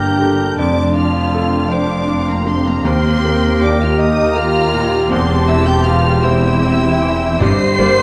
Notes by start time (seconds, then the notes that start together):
Already playing: G1 G2 A#3 D4 G4 A#4 G5 A#5 G6
0.21 D3
0.58 F1 F2 C4 D4 C5 D5 A5 D6
0.96 D4 F4 F5 F6
1.34 A4
1.70 D4 C5 D5 F5 D6
2.07 D4
2.28 A#3 A#4 A#5
2.45 C3 C4 C5 C6
2.66 A#3 A#4 A#5
2.85 D#2 A#3 C4 G4 A#4 C5 G5 C6
3.25 A#3
3.62 D4 G4 D5 D6
3.81 F4 F5 F6
3.99 D#4 D#5 A#5 D#6
4.36 A#3 F4 F5 F6
4.74 A#2
5.09 E1 E2 C4 C5 A5 C6
5.46 C4 E4 E5 E6
5.65 G4 G5 G6
5.84 F4 G4 F5 F6
6.22 E4 C5 E5 G5 E6
6.63 C4
7.02 E3
7.39 G1 G2 D3 G4 C5 D5 D#5 C6 C7
7.78 G1 G2 A#3 G4 D5